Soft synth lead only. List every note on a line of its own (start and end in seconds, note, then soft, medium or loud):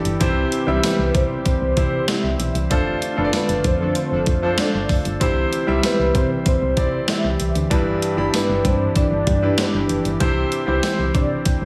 0.84 1.17 B4 medium
1.15 1.45 C5 medium
1.46 2.10 C5 loud
2.09 2.55 E5 loud
3.35 3.68 B4 medium
3.66 3.97 C5 medium
3.97 4.61 C5 loud
4.60 5.06 D5 loud
5.85 6.14 B4 medium
6.17 6.30 C5 medium
6.48 7.11 C5 loud
7.09 7.56 E5 loud
8.35 8.68 B4 medium
8.66 8.99 C5 loud
8.97 9.61 D5 loud
9.60 10.06 B4 loud
10.84 11.17 C5 medium
11.15 11.46 D5 loud